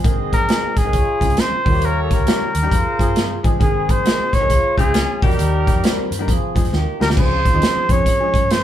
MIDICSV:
0, 0, Header, 1, 9, 480
1, 0, Start_track
1, 0, Tempo, 445434
1, 45, Time_signature, 4, 2, 24, 8
1, 9305, End_track
2, 0, Start_track
2, 0, Title_t, "Trumpet"
2, 0, Program_c, 0, 56
2, 361, Note_on_c, 0, 70, 87
2, 836, Note_on_c, 0, 68, 89
2, 852, Note_off_c, 0, 70, 0
2, 1508, Note_on_c, 0, 72, 96
2, 1524, Note_off_c, 0, 68, 0
2, 1995, Note_on_c, 0, 70, 96
2, 2011, Note_off_c, 0, 72, 0
2, 2178, Note_off_c, 0, 70, 0
2, 2185, Note_on_c, 0, 69, 59
2, 2291, Note_on_c, 0, 70, 86
2, 2307, Note_off_c, 0, 69, 0
2, 3720, Note_off_c, 0, 70, 0
2, 3897, Note_on_c, 0, 68, 92
2, 4207, Note_on_c, 0, 72, 95
2, 4224, Note_off_c, 0, 68, 0
2, 4674, Note_on_c, 0, 73, 102
2, 4690, Note_off_c, 0, 72, 0
2, 5152, Note_off_c, 0, 73, 0
2, 5162, Note_on_c, 0, 68, 92
2, 5642, Note_on_c, 0, 67, 81
2, 5658, Note_off_c, 0, 68, 0
2, 6596, Note_off_c, 0, 67, 0
2, 7563, Note_on_c, 0, 70, 89
2, 7640, Note_off_c, 0, 70, 0
2, 7735, Note_on_c, 0, 72, 97
2, 8528, Note_on_c, 0, 73, 102
2, 8544, Note_off_c, 0, 72, 0
2, 9173, Note_on_c, 0, 72, 95
2, 9189, Note_off_c, 0, 73, 0
2, 9305, Note_off_c, 0, 72, 0
2, 9305, End_track
3, 0, Start_track
3, 0, Title_t, "Horn section"
3, 0, Program_c, 1, 61
3, 47, Note_on_c, 1, 68, 71
3, 49, Note_on_c, 1, 60, 70
3, 50, Note_on_c, 1, 75, 78
3, 813, Note_off_c, 1, 68, 0
3, 814, Note_off_c, 1, 60, 0
3, 815, Note_off_c, 1, 75, 0
3, 992, Note_on_c, 1, 56, 67
3, 998, Note_on_c, 1, 73, 74
3, 999, Note_on_c, 1, 65, 70
3, 1469, Note_off_c, 1, 56, 0
3, 1472, Note_off_c, 1, 65, 0
3, 1472, Note_off_c, 1, 73, 0
3, 1788, Note_on_c, 1, 73, 86
3, 1790, Note_on_c, 1, 67, 79
3, 1791, Note_on_c, 1, 58, 76
3, 2729, Note_off_c, 1, 73, 0
3, 2730, Note_off_c, 1, 58, 0
3, 2730, Note_off_c, 1, 67, 0
3, 2924, Note_on_c, 1, 72, 82
3, 2928, Note_on_c, 1, 68, 73
3, 2929, Note_on_c, 1, 65, 72
3, 3692, Note_off_c, 1, 72, 0
3, 3694, Note_off_c, 1, 68, 0
3, 3695, Note_off_c, 1, 65, 0
3, 3881, Note_on_c, 1, 51, 74
3, 3882, Note_on_c, 1, 60, 69
3, 3882, Note_on_c, 1, 68, 83
3, 4651, Note_off_c, 1, 51, 0
3, 4651, Note_off_c, 1, 60, 0
3, 4651, Note_off_c, 1, 68, 0
3, 4840, Note_on_c, 1, 65, 73
3, 4843, Note_on_c, 1, 56, 70
3, 4845, Note_on_c, 1, 72, 82
3, 5314, Note_off_c, 1, 65, 0
3, 5315, Note_off_c, 1, 56, 0
3, 5316, Note_off_c, 1, 72, 0
3, 5623, Note_on_c, 1, 70, 91
3, 5624, Note_on_c, 1, 63, 81
3, 5628, Note_on_c, 1, 55, 80
3, 6568, Note_off_c, 1, 63, 0
3, 6568, Note_off_c, 1, 70, 0
3, 6570, Note_off_c, 1, 55, 0
3, 6762, Note_on_c, 1, 68, 75
3, 6767, Note_on_c, 1, 60, 70
3, 6768, Note_on_c, 1, 53, 70
3, 7062, Note_off_c, 1, 68, 0
3, 7065, Note_off_c, 1, 53, 0
3, 7065, Note_off_c, 1, 60, 0
3, 7252, Note_on_c, 1, 51, 76
3, 7255, Note_on_c, 1, 58, 70
3, 7255, Note_on_c, 1, 67, 79
3, 7547, Note_off_c, 1, 51, 0
3, 7548, Note_off_c, 1, 58, 0
3, 7549, Note_off_c, 1, 67, 0
3, 9305, End_track
4, 0, Start_track
4, 0, Title_t, "Clean electric guitar"
4, 0, Program_c, 2, 27
4, 5148, Note_on_c, 2, 63, 72
4, 5154, Note_on_c, 2, 60, 58
4, 5317, Note_off_c, 2, 63, 0
4, 5320, Note_off_c, 2, 60, 0
4, 5323, Note_on_c, 2, 65, 85
4, 5331, Note_on_c, 2, 61, 69
4, 5612, Note_off_c, 2, 65, 0
4, 5617, Note_off_c, 2, 61, 0
4, 5633, Note_on_c, 2, 67, 72
4, 5642, Note_on_c, 2, 63, 57
4, 6256, Note_off_c, 2, 67, 0
4, 6261, Note_off_c, 2, 63, 0
4, 9305, End_track
5, 0, Start_track
5, 0, Title_t, "Upright piano"
5, 0, Program_c, 3, 0
5, 38, Note_on_c, 3, 51, 80
5, 45, Note_on_c, 3, 56, 69
5, 45, Note_on_c, 3, 58, 59
5, 51, Note_on_c, 3, 68, 87
5, 101, Note_on_c, 3, 60, 76
5, 118, Note_off_c, 3, 58, 0
5, 450, Note_off_c, 3, 51, 0
5, 453, Note_off_c, 3, 56, 0
5, 456, Note_off_c, 3, 68, 0
5, 482, Note_off_c, 3, 60, 0
5, 517, Note_on_c, 3, 51, 63
5, 523, Note_on_c, 3, 56, 60
5, 526, Note_on_c, 3, 60, 62
5, 536, Note_on_c, 3, 68, 74
5, 859, Note_off_c, 3, 51, 0
5, 862, Note_off_c, 3, 56, 0
5, 863, Note_off_c, 3, 60, 0
5, 868, Note_off_c, 3, 68, 0
5, 905, Note_on_c, 3, 51, 71
5, 911, Note_on_c, 3, 56, 64
5, 918, Note_on_c, 3, 60, 64
5, 922, Note_on_c, 3, 68, 75
5, 999, Note_off_c, 3, 51, 0
5, 1002, Note_off_c, 3, 56, 0
5, 1006, Note_off_c, 3, 60, 0
5, 1008, Note_off_c, 3, 68, 0
5, 1291, Note_on_c, 3, 53, 66
5, 1298, Note_on_c, 3, 56, 62
5, 1305, Note_on_c, 3, 61, 59
5, 1311, Note_on_c, 3, 68, 78
5, 1657, Note_off_c, 3, 53, 0
5, 1660, Note_off_c, 3, 56, 0
5, 1664, Note_off_c, 3, 61, 0
5, 1667, Note_off_c, 3, 68, 0
5, 1774, Note_on_c, 3, 51, 70
5, 1782, Note_on_c, 3, 55, 64
5, 1783, Note_on_c, 3, 58, 64
5, 1791, Note_on_c, 3, 65, 63
5, 1832, Note_off_c, 3, 65, 0
5, 1849, Note_on_c, 3, 67, 80
5, 2331, Note_off_c, 3, 51, 0
5, 2335, Note_off_c, 3, 55, 0
5, 2336, Note_off_c, 3, 58, 0
5, 2369, Note_off_c, 3, 67, 0
5, 2436, Note_on_c, 3, 51, 66
5, 2441, Note_on_c, 3, 55, 61
5, 2448, Note_on_c, 3, 58, 60
5, 2449, Note_on_c, 3, 67, 71
5, 2778, Note_off_c, 3, 51, 0
5, 2781, Note_off_c, 3, 55, 0
5, 2785, Note_off_c, 3, 58, 0
5, 2785, Note_off_c, 3, 67, 0
5, 2828, Note_on_c, 3, 51, 85
5, 2831, Note_on_c, 3, 55, 77
5, 2839, Note_on_c, 3, 67, 92
5, 2840, Note_on_c, 3, 58, 74
5, 2921, Note_off_c, 3, 51, 0
5, 2922, Note_off_c, 3, 55, 0
5, 2926, Note_off_c, 3, 58, 0
5, 2926, Note_off_c, 3, 67, 0
5, 3218, Note_on_c, 3, 53, 76
5, 3231, Note_on_c, 3, 60, 75
5, 3236, Note_on_c, 3, 68, 95
5, 3581, Note_off_c, 3, 53, 0
5, 3587, Note_off_c, 3, 60, 0
5, 3590, Note_off_c, 3, 68, 0
5, 3696, Note_on_c, 3, 53, 78
5, 3699, Note_on_c, 3, 56, 72
5, 3705, Note_on_c, 3, 60, 71
5, 3716, Note_on_c, 3, 68, 86
5, 3843, Note_off_c, 3, 53, 0
5, 3845, Note_off_c, 3, 56, 0
5, 3848, Note_off_c, 3, 60, 0
5, 3853, Note_off_c, 3, 68, 0
5, 3868, Note_on_c, 3, 51, 72
5, 3874, Note_on_c, 3, 56, 63
5, 3880, Note_on_c, 3, 60, 65
5, 3889, Note_on_c, 3, 68, 74
5, 4285, Note_off_c, 3, 51, 0
5, 4289, Note_off_c, 3, 56, 0
5, 4291, Note_off_c, 3, 60, 0
5, 4296, Note_off_c, 3, 68, 0
5, 4351, Note_on_c, 3, 51, 66
5, 4361, Note_on_c, 3, 56, 65
5, 4363, Note_on_c, 3, 60, 62
5, 4374, Note_on_c, 3, 68, 74
5, 4697, Note_off_c, 3, 51, 0
5, 4701, Note_off_c, 3, 56, 0
5, 4703, Note_off_c, 3, 60, 0
5, 4708, Note_off_c, 3, 68, 0
5, 4736, Note_on_c, 3, 51, 72
5, 4742, Note_on_c, 3, 56, 67
5, 4749, Note_on_c, 3, 60, 67
5, 4752, Note_on_c, 3, 68, 82
5, 4835, Note_off_c, 3, 51, 0
5, 4838, Note_off_c, 3, 56, 0
5, 4842, Note_off_c, 3, 60, 0
5, 4843, Note_off_c, 3, 68, 0
5, 5137, Note_on_c, 3, 53, 71
5, 5144, Note_on_c, 3, 56, 60
5, 5144, Note_on_c, 3, 61, 60
5, 5157, Note_on_c, 3, 68, 76
5, 5501, Note_off_c, 3, 53, 0
5, 5504, Note_off_c, 3, 56, 0
5, 5504, Note_off_c, 3, 61, 0
5, 5511, Note_off_c, 3, 68, 0
5, 5630, Note_on_c, 3, 51, 70
5, 5637, Note_on_c, 3, 55, 65
5, 5639, Note_on_c, 3, 58, 64
5, 5642, Note_on_c, 3, 66, 67
5, 5678, Note_off_c, 3, 66, 0
5, 5699, Note_on_c, 3, 67, 82
5, 6181, Note_off_c, 3, 51, 0
5, 6185, Note_off_c, 3, 55, 0
5, 6186, Note_off_c, 3, 58, 0
5, 6215, Note_off_c, 3, 67, 0
5, 6277, Note_on_c, 3, 51, 80
5, 6283, Note_on_c, 3, 55, 75
5, 6284, Note_on_c, 3, 58, 77
5, 6291, Note_on_c, 3, 60, 88
5, 6620, Note_off_c, 3, 51, 0
5, 6623, Note_off_c, 3, 55, 0
5, 6624, Note_off_c, 3, 58, 0
5, 6627, Note_off_c, 3, 60, 0
5, 6668, Note_on_c, 3, 51, 82
5, 6677, Note_on_c, 3, 55, 74
5, 6680, Note_on_c, 3, 58, 77
5, 6686, Note_on_c, 3, 70, 92
5, 6762, Note_off_c, 3, 51, 0
5, 6766, Note_off_c, 3, 55, 0
5, 6768, Note_off_c, 3, 58, 0
5, 6771, Note_off_c, 3, 70, 0
5, 7055, Note_on_c, 3, 53, 80
5, 7061, Note_on_c, 3, 56, 70
5, 7064, Note_on_c, 3, 60, 73
5, 7071, Note_on_c, 3, 68, 86
5, 7240, Note_off_c, 3, 53, 0
5, 7243, Note_off_c, 3, 56, 0
5, 7244, Note_off_c, 3, 60, 0
5, 7248, Note_off_c, 3, 68, 0
5, 7541, Note_on_c, 3, 51, 78
5, 7547, Note_on_c, 3, 55, 74
5, 7552, Note_on_c, 3, 58, 71
5, 7555, Note_on_c, 3, 67, 81
5, 7687, Note_off_c, 3, 51, 0
5, 7690, Note_off_c, 3, 55, 0
5, 7693, Note_off_c, 3, 58, 0
5, 7694, Note_off_c, 3, 67, 0
5, 7709, Note_on_c, 3, 53, 68
5, 7711, Note_on_c, 3, 60, 62
5, 7720, Note_on_c, 3, 61, 64
5, 7726, Note_on_c, 3, 68, 74
5, 8056, Note_off_c, 3, 53, 0
5, 8058, Note_off_c, 3, 60, 0
5, 8062, Note_off_c, 3, 61, 0
5, 8065, Note_off_c, 3, 68, 0
5, 8113, Note_on_c, 3, 53, 72
5, 8121, Note_on_c, 3, 60, 65
5, 8123, Note_on_c, 3, 61, 61
5, 8127, Note_on_c, 3, 63, 75
5, 8416, Note_off_c, 3, 53, 0
5, 8420, Note_off_c, 3, 60, 0
5, 8421, Note_off_c, 3, 61, 0
5, 8423, Note_off_c, 3, 63, 0
5, 8501, Note_on_c, 3, 53, 65
5, 8504, Note_on_c, 3, 60, 57
5, 8511, Note_on_c, 3, 61, 58
5, 8519, Note_on_c, 3, 68, 72
5, 8743, Note_off_c, 3, 53, 0
5, 8744, Note_off_c, 3, 60, 0
5, 8748, Note_off_c, 3, 61, 0
5, 8752, Note_off_c, 3, 68, 0
5, 8824, Note_on_c, 3, 53, 72
5, 8838, Note_on_c, 3, 56, 67
5, 8839, Note_on_c, 3, 61, 62
5, 8842, Note_on_c, 3, 68, 78
5, 9190, Note_off_c, 3, 53, 0
5, 9196, Note_off_c, 3, 56, 0
5, 9197, Note_off_c, 3, 61, 0
5, 9199, Note_off_c, 3, 68, 0
5, 9305, End_track
6, 0, Start_track
6, 0, Title_t, "Tonewheel organ"
6, 0, Program_c, 4, 16
6, 7729, Note_on_c, 4, 53, 62
6, 7730, Note_on_c, 4, 49, 58
6, 7732, Note_on_c, 4, 68, 69
6, 9305, Note_off_c, 4, 49, 0
6, 9305, Note_off_c, 4, 53, 0
6, 9305, Note_off_c, 4, 68, 0
6, 9305, End_track
7, 0, Start_track
7, 0, Title_t, "Fingered electric bass"
7, 0, Program_c, 5, 33
7, 45, Note_on_c, 5, 32, 84
7, 378, Note_off_c, 5, 32, 0
7, 432, Note_on_c, 5, 34, 75
7, 509, Note_off_c, 5, 34, 0
7, 827, Note_on_c, 5, 36, 88
7, 978, Note_off_c, 5, 36, 0
7, 1004, Note_on_c, 5, 37, 92
7, 1133, Note_off_c, 5, 37, 0
7, 1304, Note_on_c, 5, 37, 80
7, 1456, Note_off_c, 5, 37, 0
7, 1788, Note_on_c, 5, 39, 94
7, 2271, Note_off_c, 5, 39, 0
7, 2356, Note_on_c, 5, 37, 85
7, 2431, Note_off_c, 5, 37, 0
7, 2743, Note_on_c, 5, 39, 83
7, 2896, Note_off_c, 5, 39, 0
7, 2926, Note_on_c, 5, 41, 95
7, 3055, Note_off_c, 5, 41, 0
7, 3226, Note_on_c, 5, 43, 88
7, 3635, Note_off_c, 5, 43, 0
7, 3710, Note_on_c, 5, 33, 82
7, 3860, Note_off_c, 5, 33, 0
7, 3885, Note_on_c, 5, 32, 94
7, 4218, Note_off_c, 5, 32, 0
7, 4275, Note_on_c, 5, 34, 82
7, 4351, Note_off_c, 5, 34, 0
7, 4667, Note_on_c, 5, 36, 90
7, 4818, Note_off_c, 5, 36, 0
7, 4843, Note_on_c, 5, 37, 95
7, 4973, Note_off_c, 5, 37, 0
7, 5147, Note_on_c, 5, 37, 84
7, 5427, Note_off_c, 5, 37, 0
7, 5630, Note_on_c, 5, 39, 93
7, 5702, Note_off_c, 5, 39, 0
7, 5708, Note_on_c, 5, 41, 75
7, 5787, Note_off_c, 5, 41, 0
7, 5809, Note_on_c, 5, 39, 102
7, 6141, Note_off_c, 5, 39, 0
7, 6194, Note_on_c, 5, 41, 89
7, 6271, Note_off_c, 5, 41, 0
7, 6583, Note_on_c, 5, 43, 84
7, 6737, Note_off_c, 5, 43, 0
7, 6766, Note_on_c, 5, 41, 89
7, 6896, Note_off_c, 5, 41, 0
7, 7062, Note_on_c, 5, 41, 75
7, 7216, Note_off_c, 5, 41, 0
7, 7242, Note_on_c, 5, 39, 85
7, 7374, Note_off_c, 5, 39, 0
7, 7550, Note_on_c, 5, 38, 81
7, 7701, Note_off_c, 5, 38, 0
7, 7726, Note_on_c, 5, 37, 88
7, 8060, Note_off_c, 5, 37, 0
7, 8119, Note_on_c, 5, 39, 77
7, 8194, Note_off_c, 5, 39, 0
7, 8504, Note_on_c, 5, 41, 92
7, 8657, Note_off_c, 5, 41, 0
7, 8982, Note_on_c, 5, 43, 73
7, 9305, Note_off_c, 5, 43, 0
7, 9305, End_track
8, 0, Start_track
8, 0, Title_t, "Muted fingered electric bass strokes"
8, 678, Note_on_c, 9, 29, 45
8, 786, Note_off_c, 9, 29, 0
8, 1632, Note_on_c, 9, 29, 43
8, 1740, Note_off_c, 9, 29, 0
8, 2602, Note_on_c, 9, 29, 45
8, 2710, Note_off_c, 9, 29, 0
8, 3084, Note_on_c, 9, 29, 43
8, 3192, Note_off_c, 9, 29, 0
8, 4514, Note_on_c, 9, 29, 41
8, 4622, Note_off_c, 9, 29, 0
8, 6437, Note_on_c, 9, 29, 43
8, 6545, Note_off_c, 9, 29, 0
8, 8360, Note_on_c, 9, 29, 44
8, 8467, Note_off_c, 9, 29, 0
8, 8827, Note_on_c, 9, 29, 44
8, 8935, Note_off_c, 9, 29, 0
8, 9305, End_track
9, 0, Start_track
9, 0, Title_t, "Drums"
9, 48, Note_on_c, 9, 36, 106
9, 49, Note_on_c, 9, 42, 82
9, 155, Note_off_c, 9, 36, 0
9, 157, Note_off_c, 9, 42, 0
9, 353, Note_on_c, 9, 36, 81
9, 356, Note_on_c, 9, 42, 64
9, 461, Note_off_c, 9, 36, 0
9, 464, Note_off_c, 9, 42, 0
9, 525, Note_on_c, 9, 42, 77
9, 541, Note_on_c, 9, 38, 108
9, 633, Note_off_c, 9, 42, 0
9, 648, Note_off_c, 9, 38, 0
9, 825, Note_on_c, 9, 36, 85
9, 826, Note_on_c, 9, 42, 69
9, 834, Note_on_c, 9, 38, 31
9, 933, Note_off_c, 9, 36, 0
9, 934, Note_off_c, 9, 42, 0
9, 942, Note_off_c, 9, 38, 0
9, 1005, Note_on_c, 9, 42, 86
9, 1006, Note_on_c, 9, 36, 81
9, 1113, Note_off_c, 9, 36, 0
9, 1113, Note_off_c, 9, 42, 0
9, 1304, Note_on_c, 9, 36, 77
9, 1313, Note_on_c, 9, 42, 67
9, 1400, Note_off_c, 9, 42, 0
9, 1400, Note_on_c, 9, 42, 41
9, 1412, Note_off_c, 9, 36, 0
9, 1476, Note_off_c, 9, 42, 0
9, 1476, Note_on_c, 9, 42, 81
9, 1486, Note_on_c, 9, 38, 91
9, 1583, Note_off_c, 9, 42, 0
9, 1594, Note_off_c, 9, 38, 0
9, 1788, Note_on_c, 9, 36, 93
9, 1791, Note_on_c, 9, 46, 46
9, 1895, Note_off_c, 9, 36, 0
9, 1899, Note_off_c, 9, 46, 0
9, 1959, Note_on_c, 9, 42, 78
9, 2067, Note_off_c, 9, 42, 0
9, 2272, Note_on_c, 9, 36, 81
9, 2272, Note_on_c, 9, 42, 64
9, 2276, Note_on_c, 9, 38, 30
9, 2379, Note_off_c, 9, 42, 0
9, 2380, Note_off_c, 9, 36, 0
9, 2384, Note_off_c, 9, 38, 0
9, 2444, Note_on_c, 9, 42, 74
9, 2460, Note_on_c, 9, 38, 107
9, 2552, Note_off_c, 9, 42, 0
9, 2568, Note_off_c, 9, 38, 0
9, 2746, Note_on_c, 9, 42, 68
9, 2854, Note_off_c, 9, 42, 0
9, 2926, Note_on_c, 9, 36, 85
9, 2931, Note_on_c, 9, 42, 88
9, 3034, Note_off_c, 9, 36, 0
9, 3039, Note_off_c, 9, 42, 0
9, 3227, Note_on_c, 9, 36, 80
9, 3239, Note_on_c, 9, 42, 68
9, 3334, Note_off_c, 9, 36, 0
9, 3347, Note_off_c, 9, 42, 0
9, 3405, Note_on_c, 9, 42, 79
9, 3416, Note_on_c, 9, 38, 88
9, 3513, Note_off_c, 9, 42, 0
9, 3523, Note_off_c, 9, 38, 0
9, 3711, Note_on_c, 9, 36, 87
9, 3713, Note_on_c, 9, 42, 63
9, 3819, Note_off_c, 9, 36, 0
9, 3821, Note_off_c, 9, 42, 0
9, 3887, Note_on_c, 9, 36, 99
9, 3889, Note_on_c, 9, 42, 77
9, 3994, Note_off_c, 9, 36, 0
9, 3996, Note_off_c, 9, 42, 0
9, 4193, Note_on_c, 9, 36, 82
9, 4195, Note_on_c, 9, 42, 69
9, 4301, Note_off_c, 9, 36, 0
9, 4303, Note_off_c, 9, 42, 0
9, 4371, Note_on_c, 9, 42, 77
9, 4387, Note_on_c, 9, 38, 106
9, 4479, Note_off_c, 9, 42, 0
9, 4495, Note_off_c, 9, 38, 0
9, 4667, Note_on_c, 9, 36, 81
9, 4673, Note_on_c, 9, 42, 68
9, 4681, Note_on_c, 9, 38, 31
9, 4774, Note_off_c, 9, 36, 0
9, 4781, Note_off_c, 9, 42, 0
9, 4789, Note_off_c, 9, 38, 0
9, 4847, Note_on_c, 9, 36, 81
9, 4850, Note_on_c, 9, 42, 90
9, 4955, Note_off_c, 9, 36, 0
9, 4957, Note_off_c, 9, 42, 0
9, 5146, Note_on_c, 9, 36, 83
9, 5161, Note_on_c, 9, 42, 67
9, 5254, Note_off_c, 9, 36, 0
9, 5269, Note_off_c, 9, 42, 0
9, 5325, Note_on_c, 9, 42, 84
9, 5336, Note_on_c, 9, 38, 92
9, 5433, Note_off_c, 9, 42, 0
9, 5443, Note_off_c, 9, 38, 0
9, 5629, Note_on_c, 9, 36, 99
9, 5630, Note_on_c, 9, 46, 48
9, 5726, Note_on_c, 9, 42, 46
9, 5737, Note_off_c, 9, 36, 0
9, 5738, Note_off_c, 9, 46, 0
9, 5808, Note_off_c, 9, 42, 0
9, 5808, Note_on_c, 9, 42, 73
9, 5916, Note_off_c, 9, 42, 0
9, 6114, Note_on_c, 9, 36, 84
9, 6118, Note_on_c, 9, 42, 65
9, 6122, Note_on_c, 9, 38, 31
9, 6221, Note_off_c, 9, 36, 0
9, 6226, Note_off_c, 9, 42, 0
9, 6230, Note_off_c, 9, 38, 0
9, 6290, Note_on_c, 9, 42, 79
9, 6306, Note_on_c, 9, 38, 109
9, 6398, Note_off_c, 9, 42, 0
9, 6414, Note_off_c, 9, 38, 0
9, 6595, Note_on_c, 9, 42, 66
9, 6703, Note_off_c, 9, 42, 0
9, 6768, Note_on_c, 9, 36, 82
9, 6773, Note_on_c, 9, 42, 88
9, 6875, Note_off_c, 9, 36, 0
9, 6881, Note_off_c, 9, 42, 0
9, 7066, Note_on_c, 9, 36, 83
9, 7073, Note_on_c, 9, 42, 68
9, 7165, Note_off_c, 9, 42, 0
9, 7165, Note_on_c, 9, 42, 42
9, 7173, Note_off_c, 9, 36, 0
9, 7253, Note_on_c, 9, 38, 51
9, 7273, Note_off_c, 9, 42, 0
9, 7361, Note_off_c, 9, 38, 0
9, 7557, Note_on_c, 9, 38, 82
9, 7650, Note_off_c, 9, 38, 0
9, 7650, Note_on_c, 9, 38, 79
9, 7726, Note_on_c, 9, 36, 97
9, 7726, Note_on_c, 9, 49, 80
9, 7758, Note_off_c, 9, 38, 0
9, 7834, Note_off_c, 9, 36, 0
9, 7834, Note_off_c, 9, 49, 0
9, 8033, Note_on_c, 9, 36, 84
9, 8036, Note_on_c, 9, 42, 64
9, 8041, Note_on_c, 9, 38, 33
9, 8140, Note_off_c, 9, 36, 0
9, 8144, Note_off_c, 9, 42, 0
9, 8148, Note_off_c, 9, 38, 0
9, 8209, Note_on_c, 9, 42, 77
9, 8225, Note_on_c, 9, 38, 106
9, 8317, Note_off_c, 9, 42, 0
9, 8333, Note_off_c, 9, 38, 0
9, 8505, Note_on_c, 9, 36, 89
9, 8510, Note_on_c, 9, 42, 69
9, 8613, Note_off_c, 9, 36, 0
9, 8618, Note_off_c, 9, 42, 0
9, 8685, Note_on_c, 9, 36, 77
9, 8688, Note_on_c, 9, 42, 93
9, 8793, Note_off_c, 9, 36, 0
9, 8796, Note_off_c, 9, 42, 0
9, 8985, Note_on_c, 9, 36, 82
9, 8997, Note_on_c, 9, 42, 73
9, 9092, Note_off_c, 9, 36, 0
9, 9105, Note_off_c, 9, 42, 0
9, 9165, Note_on_c, 9, 42, 82
9, 9176, Note_on_c, 9, 38, 87
9, 9273, Note_off_c, 9, 42, 0
9, 9284, Note_off_c, 9, 38, 0
9, 9305, End_track
0, 0, End_of_file